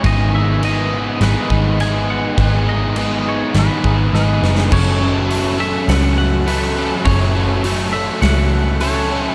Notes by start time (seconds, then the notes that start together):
0.03 G#1 G#2 D#3 G#3 B3 D#4 G#4 D#5, kick, crash
0.35 E5
0.62 G#3 B3 D#4 G#4 D#5, crash
1.21 G#1 G#2 D#3 G#3 B3 D#4 G#4 B4, snare, crash
1.50 G#1 G#3 B3 D#4 G#4, kick
1.80 G#3 B3 D#4 G#4 G#5, snare, crash
2.10 F#5
2.38 G#1 G#2 D#3 G#3 B3 D#4 G#4, kick, crash
2.69 D#5
2.96 G#3 B3 D#4 G#4, crash
3.29 C#5
3.54 G#1 G#2 D#3 G#3 B3 D#4 G#4, snare, crash
3.58 B4
3.84 G#1 G#3 B3 D#4 G#4, kick
4.13 G#1 G#3 B3 D#4 G#4 B4, snare
4.43 F#1, snare
4.58 snare
4.71 F#1 F#2 C#3 F#3 A3 C#4 A4 C#5, kick, crash
5.01 F#3 A3 C#4 A4
5.30 F#3 A3 C#4 A4, open hi-hat
5.58 F#3 A3 C#4 A4 E5
5.88 C#2 F#5, snare, open hi-hat
6.18 F#5
6.46 F#3 A3 C#4 A4 B4, open hi-hat
6.77 F#3 A3 C#4 A4
7.05 F#1 F#2 C#3 F#3 A3 C#4 A4 C#5, kick, open hi-hat
7.35 F#3 A3 C#4 A4
7.64 F#3 A3 C#4 A4, open hi-hat
7.93 F#3 A3 C#4 A4 E5
8.22 C#2 F#5, snare, open hi-hat
8.80 F#3 A3 C#4 A4 C#5, open hi-hat
9.10 F#3 A3 C#4 A4
9.28 B4